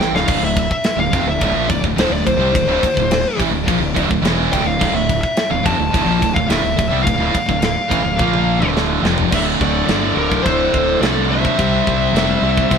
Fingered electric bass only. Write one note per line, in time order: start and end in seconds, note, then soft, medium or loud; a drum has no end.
0.00 0.12 A1 medium
0.13 0.27 D1 medium
0.28 0.41 D1 medium
0.41 0.68 D1 medium
0.97 1.11 D1 medium
1.13 1.23 F1 loud
1.24 1.39 D1 medium
1.42 1.52 D1 loud
1.53 1.67 A#1 medium
1.69 1.83 D1 medium
1.83 1.96 D1 medium
1.97 2.10 D1 medium
2.10 2.24 D1 medium
2.27 2.37 D1 medium
2.38 2.52 C2 loud
2.55 2.66 D1 medium
2.67 2.81 D1 medium
2.83 muted fingered electric bass stroke soft
2.97 3.24 D1 medium
3.40 3.50 A1 medium
3.51 3.65 D1 medium
3.68 3.80 A#1 medium
3.80 3.94 D1 medium
3.97 4.10 D1 loud
4.11 4.21 D1 medium
4.21 4.49 E1 medium
4.53 4.64 D1 loud
4.65 4.79 D1 medium
4.81 4.92 D1 medium
4.92 5.20 D1 medium
5.51 5.65 D1 medium
5.65 5.78 F1 medium
5.78 5.92 D1 medium
5.94 6.05 D1 medium
6.06 6.20 A#1 loud
6.22 6.35 D1 medium
6.36 6.48 D1 medium
6.49 6.63 D1 medium
6.64 6.77 D1 medium
6.79 6.92 D1 medium
6.92 7.05 C2 loud
7.07 7.18 D1 medium
7.19 7.33 D1 medium
7.35 muted fingered electric bass stroke soft
7.49 7.75 D1 medium
7.91 8.03 A1 medium
8.03 8.17 D1 medium
8.20 8.59 A#1 medium
8.61 9.00 D1 medium
9.03 9.30 F1 loud
9.33 9.54 D1 medium
9.60 9.82 D1 medium
9.89 10.10 G1 medium
10.17 10.39 D1 medium
10.46 10.67 D1 medium
10.74 10.95 D1 loud
11.00 11.44 C2 medium
11.59 11.80 C2 medium
11.87 12.09 C2 loud
12.13 12.35 F1 loud
12.42 12.64 C2 loud
12.71 12.78 C2 medium